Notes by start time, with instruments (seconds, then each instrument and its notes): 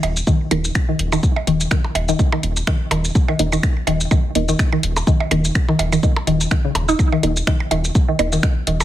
0.03 analog synth bass D#1, closed hi-hat, percussion blips
0.17 shaker
0.27 synth arpeggio sound D#3, kick, shaker
0.51 analog synth bass D#1, synth arpeggio sound D#3, synth stab D#4 A#4 D#5, closed hi-hat, percussion blips
0.65 shaker
0.75 finger snap, kick, shaker
0.89 synth arpeggio sound D#3
0.99 analog synth bass D#1, closed hi-hat
1.12 synth arpeggio sound D#3, percussion blips, shaker
1.23 kick, shaker
1.36 percussion blips
1.47 analog synth bass D#1, synth arpeggio sound D#3, synth stab D#4 A#4 D#5, closed hi-hat
1.61 shaker
1.71 synth arpeggio sound D#3, finger snap, kick, percussion blips, shaker
1.84 percussion blips
1.95 analog synth bass D#1, closed hi-hat, percussion blips
2.09 synth arpeggio sound D#3, shaker
2.19 synth stab D#4 A#4 D#5, kick, shaker
2.32 synth arpeggio sound D#3, percussion blips
2.43 analog synth bass D#1, closed hi-hat
2.57 shaker
2.67 synth arpeggio sound D#3, finger snap, kick, shaker
2.91 analog synth bass D#1, synth arpeggio sound D#3, closed hi-hat, percussion blips
3.05 shaker
3.15 kick, shaker
3.28 synth arpeggio sound D#3, percussion blips
3.39 analog synth bass D#1, synth stab D#4 A#4 D#5, closed hi-hat
3.52 synth arpeggio sound D#3, percussion blips, shaker
3.63 finger snap, kick, shaker
3.87 analog synth bass D#1, synth arpeggio sound D#3, closed hi-hat, percussion blips
4.01 shaker
4.11 synth arpeggio sound D#3, kick, percussion blips, shaker
4.35 analog synth bass D#1, synth stab D#4 A#4 D#5, closed hi-hat
4.49 synth arpeggio sound D#3, shaker
4.59 finger snap, kick, shaker
4.72 synth arpeggio sound D#3, percussion blips
4.83 analog synth bass D#1, closed hi-hat
4.96 percussion blips, shaker
5.07 synth arpeggio sound D#3, kick, shaker
5.20 percussion blips
5.31 analog synth bass D#1, synth arpeggio sound D#3, synth stab D#4 A#4 D#5, closed hi-hat, percussion blips
5.45 shaker
5.55 finger snap, kick, shaker
5.68 synth arpeggio sound D#3, percussion blips
5.79 analog synth bass D#1, closed hi-hat, percussion blips
5.92 synth arpeggio sound D#3, percussion blips, shaker
6.03 synth stab D#4 A#4 D#5, kick, shaker
6.16 percussion blips
6.27 analog synth bass D#1, synth arpeggio sound D#3, closed hi-hat
6.41 shaker
6.51 synth arpeggio sound D#3, finger snap, kick, percussion blips, shaker
6.65 synth arpeggio sound C#3
6.75 analog synth bass D#1, closed hi-hat, percussion blips
6.88 synth arpeggio sound D#4, shaker
6.99 kick, percussion blips, shaker
7.12 synth arpeggio sound D#3, percussion blips
7.23 analog synth bass D#1, synth stab D#4 A#4 D#5, closed hi-hat
7.37 shaker
7.47 synth arpeggio sound D#3, finger snap, kick, shaker
7.60 percussion blips
7.71 analog synth bass D#1, synth arpeggio sound D#3, closed hi-hat, percussion blips
7.85 shaker
7.95 kick, shaker
8.08 synth arpeggio sound D#3
8.19 analog synth bass D#1, synth stab D#4 A#4 D#5, closed hi-hat, percussion blips
8.32 synth arpeggio sound D#3, shaker
8.43 finger snap, kick, shaker
8.67 analog synth bass D#1, synth arpeggio sound D#3, closed hi-hat
8.80 percussion blips, shaker